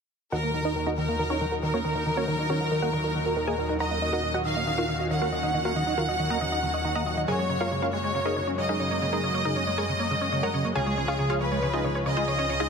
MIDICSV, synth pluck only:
0, 0, Header, 1, 2, 480
1, 0, Start_track
1, 0, Key_signature, -6, "minor"
1, 0, Tempo, 434783
1, 357, Time_signature, 4, 2, 24, 8
1, 14011, End_track
2, 0, Start_track
2, 0, Title_t, "Synth pluck"
2, 0, Program_c, 0, 84
2, 357, Note_on_c, 0, 75, 73
2, 357, Note_on_c, 0, 78, 96
2, 358, Note_on_c, 0, 66, 74
2, 358, Note_on_c, 0, 70, 73
2, 446, Note_off_c, 0, 75, 0
2, 447, Note_off_c, 0, 66, 0
2, 447, Note_off_c, 0, 70, 0
2, 447, Note_off_c, 0, 78, 0
2, 477, Note_on_c, 0, 70, 62
2, 566, Note_off_c, 0, 70, 0
2, 597, Note_on_c, 0, 70, 57
2, 686, Note_off_c, 0, 70, 0
2, 717, Note_on_c, 0, 63, 74
2, 717, Note_on_c, 0, 70, 75
2, 717, Note_on_c, 0, 75, 87
2, 718, Note_on_c, 0, 66, 73
2, 806, Note_off_c, 0, 63, 0
2, 806, Note_off_c, 0, 70, 0
2, 806, Note_off_c, 0, 75, 0
2, 807, Note_off_c, 0, 66, 0
2, 837, Note_on_c, 0, 70, 62
2, 927, Note_off_c, 0, 70, 0
2, 955, Note_on_c, 0, 66, 72
2, 956, Note_on_c, 0, 75, 93
2, 957, Note_on_c, 0, 63, 68
2, 957, Note_on_c, 0, 70, 73
2, 1045, Note_off_c, 0, 66, 0
2, 1046, Note_off_c, 0, 63, 0
2, 1046, Note_off_c, 0, 70, 0
2, 1046, Note_off_c, 0, 75, 0
2, 1077, Note_on_c, 0, 70, 61
2, 1166, Note_off_c, 0, 70, 0
2, 1196, Note_on_c, 0, 70, 62
2, 1286, Note_off_c, 0, 70, 0
2, 1317, Note_on_c, 0, 70, 59
2, 1406, Note_off_c, 0, 70, 0
2, 1436, Note_on_c, 0, 66, 71
2, 1436, Note_on_c, 0, 73, 87
2, 1437, Note_on_c, 0, 61, 72
2, 1437, Note_on_c, 0, 70, 71
2, 1526, Note_off_c, 0, 61, 0
2, 1526, Note_off_c, 0, 66, 0
2, 1526, Note_off_c, 0, 70, 0
2, 1526, Note_off_c, 0, 73, 0
2, 1556, Note_on_c, 0, 70, 62
2, 1646, Note_off_c, 0, 70, 0
2, 1677, Note_on_c, 0, 70, 61
2, 1766, Note_off_c, 0, 70, 0
2, 1796, Note_on_c, 0, 70, 61
2, 1886, Note_off_c, 0, 70, 0
2, 1918, Note_on_c, 0, 70, 72
2, 1919, Note_on_c, 0, 61, 71
2, 1919, Note_on_c, 0, 73, 91
2, 1920, Note_on_c, 0, 66, 73
2, 2007, Note_off_c, 0, 70, 0
2, 2007, Note_off_c, 0, 73, 0
2, 2008, Note_off_c, 0, 61, 0
2, 2008, Note_off_c, 0, 66, 0
2, 2039, Note_on_c, 0, 70, 64
2, 2127, Note_off_c, 0, 70, 0
2, 2160, Note_on_c, 0, 70, 59
2, 2248, Note_off_c, 0, 70, 0
2, 2279, Note_on_c, 0, 70, 62
2, 2368, Note_off_c, 0, 70, 0
2, 2397, Note_on_c, 0, 66, 73
2, 2398, Note_on_c, 0, 61, 72
2, 2398, Note_on_c, 0, 70, 78
2, 2399, Note_on_c, 0, 73, 95
2, 2487, Note_off_c, 0, 61, 0
2, 2487, Note_off_c, 0, 66, 0
2, 2487, Note_off_c, 0, 70, 0
2, 2487, Note_off_c, 0, 73, 0
2, 2516, Note_on_c, 0, 70, 60
2, 2606, Note_off_c, 0, 70, 0
2, 2636, Note_on_c, 0, 70, 62
2, 2726, Note_off_c, 0, 70, 0
2, 2757, Note_on_c, 0, 61, 75
2, 2757, Note_on_c, 0, 66, 75
2, 2757, Note_on_c, 0, 73, 91
2, 2758, Note_on_c, 0, 70, 74
2, 2846, Note_off_c, 0, 61, 0
2, 2846, Note_off_c, 0, 66, 0
2, 2847, Note_off_c, 0, 70, 0
2, 2847, Note_off_c, 0, 73, 0
2, 2878, Note_on_c, 0, 70, 60
2, 2967, Note_off_c, 0, 70, 0
2, 2999, Note_on_c, 0, 70, 62
2, 3087, Note_off_c, 0, 70, 0
2, 3117, Note_on_c, 0, 66, 75
2, 3117, Note_on_c, 0, 70, 77
2, 3117, Note_on_c, 0, 78, 90
2, 3118, Note_on_c, 0, 75, 74
2, 3206, Note_off_c, 0, 66, 0
2, 3206, Note_off_c, 0, 70, 0
2, 3206, Note_off_c, 0, 78, 0
2, 3207, Note_off_c, 0, 75, 0
2, 3239, Note_on_c, 0, 70, 63
2, 3327, Note_off_c, 0, 70, 0
2, 3357, Note_on_c, 0, 70, 62
2, 3446, Note_off_c, 0, 70, 0
2, 3598, Note_on_c, 0, 70, 61
2, 3687, Note_off_c, 0, 70, 0
2, 3716, Note_on_c, 0, 70, 62
2, 3806, Note_off_c, 0, 70, 0
2, 3836, Note_on_c, 0, 68, 73
2, 3836, Note_on_c, 0, 70, 73
2, 3836, Note_on_c, 0, 75, 74
2, 3836, Note_on_c, 0, 80, 91
2, 3926, Note_off_c, 0, 68, 0
2, 3926, Note_off_c, 0, 70, 0
2, 3926, Note_off_c, 0, 75, 0
2, 3926, Note_off_c, 0, 80, 0
2, 3958, Note_on_c, 0, 70, 63
2, 4047, Note_off_c, 0, 70, 0
2, 4078, Note_on_c, 0, 70, 62
2, 4167, Note_off_c, 0, 70, 0
2, 4199, Note_on_c, 0, 70, 75
2, 4199, Note_on_c, 0, 78, 75
2, 4199, Note_on_c, 0, 82, 100
2, 4200, Note_on_c, 0, 75, 74
2, 4287, Note_off_c, 0, 70, 0
2, 4287, Note_off_c, 0, 78, 0
2, 4288, Note_off_c, 0, 75, 0
2, 4288, Note_off_c, 0, 82, 0
2, 4317, Note_on_c, 0, 75, 65
2, 4407, Note_off_c, 0, 75, 0
2, 4439, Note_on_c, 0, 75, 63
2, 4527, Note_off_c, 0, 75, 0
2, 4557, Note_on_c, 0, 66, 75
2, 4557, Note_on_c, 0, 75, 74
2, 4557, Note_on_c, 0, 78, 88
2, 4558, Note_on_c, 0, 70, 75
2, 4646, Note_off_c, 0, 66, 0
2, 4647, Note_off_c, 0, 70, 0
2, 4647, Note_off_c, 0, 75, 0
2, 4647, Note_off_c, 0, 78, 0
2, 4676, Note_on_c, 0, 75, 64
2, 4766, Note_off_c, 0, 75, 0
2, 4795, Note_on_c, 0, 66, 74
2, 4795, Note_on_c, 0, 75, 73
2, 4795, Note_on_c, 0, 78, 89
2, 4796, Note_on_c, 0, 70, 70
2, 4885, Note_off_c, 0, 75, 0
2, 4886, Note_off_c, 0, 66, 0
2, 4886, Note_off_c, 0, 70, 0
2, 4886, Note_off_c, 0, 78, 0
2, 4917, Note_on_c, 0, 75, 62
2, 5006, Note_off_c, 0, 75, 0
2, 5039, Note_on_c, 0, 75, 64
2, 5127, Note_off_c, 0, 75, 0
2, 5159, Note_on_c, 0, 75, 62
2, 5248, Note_off_c, 0, 75, 0
2, 5277, Note_on_c, 0, 66, 72
2, 5278, Note_on_c, 0, 65, 71
2, 5278, Note_on_c, 0, 70, 75
2, 5278, Note_on_c, 0, 77, 84
2, 5366, Note_off_c, 0, 66, 0
2, 5367, Note_off_c, 0, 65, 0
2, 5367, Note_off_c, 0, 70, 0
2, 5367, Note_off_c, 0, 77, 0
2, 5398, Note_on_c, 0, 75, 60
2, 5487, Note_off_c, 0, 75, 0
2, 5520, Note_on_c, 0, 75, 62
2, 5608, Note_off_c, 0, 75, 0
2, 5639, Note_on_c, 0, 75, 62
2, 5727, Note_off_c, 0, 75, 0
2, 5758, Note_on_c, 0, 70, 74
2, 5758, Note_on_c, 0, 77, 89
2, 5759, Note_on_c, 0, 65, 75
2, 5759, Note_on_c, 0, 66, 74
2, 5847, Note_off_c, 0, 65, 0
2, 5847, Note_off_c, 0, 66, 0
2, 5847, Note_off_c, 0, 70, 0
2, 5847, Note_off_c, 0, 77, 0
2, 5878, Note_on_c, 0, 75, 63
2, 5967, Note_off_c, 0, 75, 0
2, 5997, Note_on_c, 0, 75, 60
2, 6087, Note_off_c, 0, 75, 0
2, 6118, Note_on_c, 0, 75, 60
2, 6207, Note_off_c, 0, 75, 0
2, 6239, Note_on_c, 0, 66, 74
2, 6239, Note_on_c, 0, 70, 73
2, 6239, Note_on_c, 0, 77, 90
2, 6240, Note_on_c, 0, 65, 71
2, 6327, Note_off_c, 0, 66, 0
2, 6327, Note_off_c, 0, 70, 0
2, 6327, Note_off_c, 0, 77, 0
2, 6328, Note_off_c, 0, 65, 0
2, 6359, Note_on_c, 0, 75, 64
2, 6448, Note_off_c, 0, 75, 0
2, 6479, Note_on_c, 0, 75, 64
2, 6567, Note_off_c, 0, 75, 0
2, 6598, Note_on_c, 0, 66, 76
2, 6599, Note_on_c, 0, 65, 74
2, 6599, Note_on_c, 0, 70, 75
2, 6599, Note_on_c, 0, 77, 94
2, 6687, Note_off_c, 0, 65, 0
2, 6687, Note_off_c, 0, 66, 0
2, 6687, Note_off_c, 0, 70, 0
2, 6687, Note_off_c, 0, 77, 0
2, 6718, Note_on_c, 0, 75, 61
2, 6807, Note_off_c, 0, 75, 0
2, 6838, Note_on_c, 0, 75, 60
2, 6927, Note_off_c, 0, 75, 0
2, 6958, Note_on_c, 0, 78, 77
2, 6959, Note_on_c, 0, 70, 79
2, 6959, Note_on_c, 0, 75, 79
2, 6959, Note_on_c, 0, 82, 94
2, 7047, Note_off_c, 0, 70, 0
2, 7047, Note_off_c, 0, 75, 0
2, 7047, Note_off_c, 0, 78, 0
2, 7047, Note_off_c, 0, 82, 0
2, 7079, Note_on_c, 0, 75, 63
2, 7167, Note_off_c, 0, 75, 0
2, 7199, Note_on_c, 0, 75, 63
2, 7287, Note_off_c, 0, 75, 0
2, 7439, Note_on_c, 0, 75, 60
2, 7527, Note_off_c, 0, 75, 0
2, 7559, Note_on_c, 0, 75, 60
2, 7648, Note_off_c, 0, 75, 0
2, 7677, Note_on_c, 0, 78, 73
2, 7678, Note_on_c, 0, 75, 75
2, 7678, Note_on_c, 0, 87, 92
2, 7679, Note_on_c, 0, 82, 75
2, 7766, Note_off_c, 0, 78, 0
2, 7767, Note_off_c, 0, 75, 0
2, 7767, Note_off_c, 0, 82, 0
2, 7767, Note_off_c, 0, 87, 0
2, 7798, Note_on_c, 0, 75, 63
2, 7887, Note_off_c, 0, 75, 0
2, 7920, Note_on_c, 0, 75, 62
2, 8008, Note_off_c, 0, 75, 0
2, 8039, Note_on_c, 0, 68, 74
2, 8039, Note_on_c, 0, 70, 76
2, 8039, Note_on_c, 0, 73, 72
2, 8039, Note_on_c, 0, 80, 100
2, 8127, Note_off_c, 0, 68, 0
2, 8127, Note_off_c, 0, 70, 0
2, 8127, Note_off_c, 0, 73, 0
2, 8128, Note_off_c, 0, 80, 0
2, 8159, Note_on_c, 0, 73, 66
2, 8247, Note_off_c, 0, 73, 0
2, 8277, Note_on_c, 0, 73, 60
2, 8366, Note_off_c, 0, 73, 0
2, 8397, Note_on_c, 0, 65, 76
2, 8397, Note_on_c, 0, 70, 78
2, 8397, Note_on_c, 0, 73, 75
2, 8397, Note_on_c, 0, 77, 91
2, 8486, Note_off_c, 0, 65, 0
2, 8486, Note_off_c, 0, 70, 0
2, 8486, Note_off_c, 0, 73, 0
2, 8487, Note_off_c, 0, 77, 0
2, 8519, Note_on_c, 0, 73, 63
2, 8607, Note_off_c, 0, 73, 0
2, 8636, Note_on_c, 0, 70, 72
2, 8637, Note_on_c, 0, 65, 71
2, 8637, Note_on_c, 0, 73, 73
2, 8637, Note_on_c, 0, 77, 91
2, 8726, Note_off_c, 0, 65, 0
2, 8726, Note_off_c, 0, 70, 0
2, 8726, Note_off_c, 0, 73, 0
2, 8726, Note_off_c, 0, 77, 0
2, 8756, Note_on_c, 0, 73, 63
2, 8846, Note_off_c, 0, 73, 0
2, 8876, Note_on_c, 0, 73, 64
2, 8966, Note_off_c, 0, 73, 0
2, 8995, Note_on_c, 0, 73, 65
2, 9085, Note_off_c, 0, 73, 0
2, 9114, Note_on_c, 0, 68, 72
2, 9114, Note_on_c, 0, 75, 90
2, 9115, Note_on_c, 0, 63, 74
2, 9115, Note_on_c, 0, 70, 72
2, 9205, Note_off_c, 0, 63, 0
2, 9205, Note_off_c, 0, 68, 0
2, 9205, Note_off_c, 0, 70, 0
2, 9205, Note_off_c, 0, 75, 0
2, 9235, Note_on_c, 0, 73, 61
2, 9325, Note_off_c, 0, 73, 0
2, 9355, Note_on_c, 0, 73, 64
2, 9445, Note_off_c, 0, 73, 0
2, 9472, Note_on_c, 0, 73, 60
2, 9564, Note_off_c, 0, 73, 0
2, 9595, Note_on_c, 0, 63, 76
2, 9595, Note_on_c, 0, 68, 73
2, 9595, Note_on_c, 0, 70, 75
2, 9595, Note_on_c, 0, 75, 95
2, 9685, Note_off_c, 0, 63, 0
2, 9685, Note_off_c, 0, 68, 0
2, 9685, Note_off_c, 0, 70, 0
2, 9685, Note_off_c, 0, 75, 0
2, 9715, Note_on_c, 0, 73, 65
2, 9805, Note_off_c, 0, 73, 0
2, 9836, Note_on_c, 0, 73, 63
2, 9926, Note_off_c, 0, 73, 0
2, 9956, Note_on_c, 0, 73, 62
2, 10046, Note_off_c, 0, 73, 0
2, 10077, Note_on_c, 0, 70, 77
2, 10077, Note_on_c, 0, 75, 90
2, 10078, Note_on_c, 0, 63, 73
2, 10078, Note_on_c, 0, 68, 78
2, 10166, Note_off_c, 0, 70, 0
2, 10166, Note_off_c, 0, 75, 0
2, 10167, Note_off_c, 0, 63, 0
2, 10167, Note_off_c, 0, 68, 0
2, 10196, Note_on_c, 0, 73, 62
2, 10286, Note_off_c, 0, 73, 0
2, 10315, Note_on_c, 0, 73, 63
2, 10405, Note_off_c, 0, 73, 0
2, 10436, Note_on_c, 0, 70, 75
2, 10436, Note_on_c, 0, 75, 96
2, 10437, Note_on_c, 0, 63, 77
2, 10437, Note_on_c, 0, 68, 77
2, 10526, Note_off_c, 0, 63, 0
2, 10526, Note_off_c, 0, 68, 0
2, 10526, Note_off_c, 0, 70, 0
2, 10526, Note_off_c, 0, 75, 0
2, 10556, Note_on_c, 0, 73, 62
2, 10646, Note_off_c, 0, 73, 0
2, 10676, Note_on_c, 0, 73, 59
2, 10766, Note_off_c, 0, 73, 0
2, 10796, Note_on_c, 0, 80, 98
2, 10797, Note_on_c, 0, 68, 77
2, 10797, Note_on_c, 0, 70, 77
2, 10797, Note_on_c, 0, 73, 77
2, 10886, Note_off_c, 0, 68, 0
2, 10886, Note_off_c, 0, 70, 0
2, 10886, Note_off_c, 0, 73, 0
2, 10886, Note_off_c, 0, 80, 0
2, 10917, Note_on_c, 0, 73, 63
2, 11006, Note_off_c, 0, 73, 0
2, 11037, Note_on_c, 0, 73, 61
2, 11126, Note_off_c, 0, 73, 0
2, 11276, Note_on_c, 0, 73, 63
2, 11366, Note_off_c, 0, 73, 0
2, 11397, Note_on_c, 0, 73, 62
2, 11486, Note_off_c, 0, 73, 0
2, 11516, Note_on_c, 0, 70, 75
2, 11516, Note_on_c, 0, 73, 75
2, 11517, Note_on_c, 0, 78, 75
2, 11517, Note_on_c, 0, 82, 92
2, 11606, Note_off_c, 0, 70, 0
2, 11606, Note_off_c, 0, 73, 0
2, 11606, Note_off_c, 0, 78, 0
2, 11606, Note_off_c, 0, 82, 0
2, 11635, Note_on_c, 0, 73, 63
2, 11725, Note_off_c, 0, 73, 0
2, 11755, Note_on_c, 0, 73, 61
2, 11845, Note_off_c, 0, 73, 0
2, 11873, Note_on_c, 0, 77, 76
2, 11874, Note_on_c, 0, 68, 73
2, 11874, Note_on_c, 0, 73, 75
2, 11874, Note_on_c, 0, 80, 95
2, 11965, Note_off_c, 0, 68, 0
2, 11965, Note_off_c, 0, 73, 0
2, 11965, Note_off_c, 0, 77, 0
2, 11965, Note_off_c, 0, 80, 0
2, 11995, Note_on_c, 0, 73, 60
2, 12085, Note_off_c, 0, 73, 0
2, 12115, Note_on_c, 0, 73, 59
2, 12206, Note_off_c, 0, 73, 0
2, 12234, Note_on_c, 0, 65, 78
2, 12234, Note_on_c, 0, 68, 76
2, 12234, Note_on_c, 0, 73, 78
2, 12234, Note_on_c, 0, 77, 87
2, 12325, Note_off_c, 0, 65, 0
2, 12325, Note_off_c, 0, 68, 0
2, 12325, Note_off_c, 0, 73, 0
2, 12325, Note_off_c, 0, 77, 0
2, 12353, Note_on_c, 0, 73, 64
2, 12444, Note_off_c, 0, 73, 0
2, 12472, Note_on_c, 0, 73, 71
2, 12473, Note_on_c, 0, 65, 71
2, 12473, Note_on_c, 0, 77, 91
2, 12474, Note_on_c, 0, 68, 72
2, 12564, Note_off_c, 0, 73, 0
2, 12565, Note_off_c, 0, 65, 0
2, 12565, Note_off_c, 0, 68, 0
2, 12565, Note_off_c, 0, 77, 0
2, 12594, Note_on_c, 0, 73, 64
2, 12685, Note_off_c, 0, 73, 0
2, 12714, Note_on_c, 0, 73, 68
2, 12805, Note_off_c, 0, 73, 0
2, 12834, Note_on_c, 0, 73, 63
2, 12925, Note_off_c, 0, 73, 0
2, 12954, Note_on_c, 0, 65, 75
2, 12954, Note_on_c, 0, 68, 75
2, 12955, Note_on_c, 0, 63, 77
2, 12955, Note_on_c, 0, 75, 92
2, 13045, Note_off_c, 0, 65, 0
2, 13045, Note_off_c, 0, 68, 0
2, 13045, Note_off_c, 0, 75, 0
2, 13046, Note_off_c, 0, 63, 0
2, 13076, Note_on_c, 0, 73, 64
2, 13166, Note_off_c, 0, 73, 0
2, 13195, Note_on_c, 0, 73, 61
2, 13285, Note_off_c, 0, 73, 0
2, 13315, Note_on_c, 0, 73, 62
2, 13405, Note_off_c, 0, 73, 0
2, 13434, Note_on_c, 0, 63, 75
2, 13434, Note_on_c, 0, 65, 75
2, 13434, Note_on_c, 0, 68, 72
2, 13434, Note_on_c, 0, 75, 92
2, 13525, Note_off_c, 0, 63, 0
2, 13525, Note_off_c, 0, 65, 0
2, 13525, Note_off_c, 0, 68, 0
2, 13525, Note_off_c, 0, 75, 0
2, 13554, Note_on_c, 0, 73, 64
2, 13645, Note_off_c, 0, 73, 0
2, 13672, Note_on_c, 0, 73, 65
2, 13764, Note_off_c, 0, 73, 0
2, 13793, Note_on_c, 0, 73, 59
2, 13885, Note_off_c, 0, 73, 0
2, 13911, Note_on_c, 0, 63, 74
2, 13911, Note_on_c, 0, 65, 72
2, 13912, Note_on_c, 0, 68, 74
2, 13912, Note_on_c, 0, 75, 96
2, 14003, Note_off_c, 0, 63, 0
2, 14003, Note_off_c, 0, 65, 0
2, 14004, Note_off_c, 0, 68, 0
2, 14004, Note_off_c, 0, 75, 0
2, 14011, End_track
0, 0, End_of_file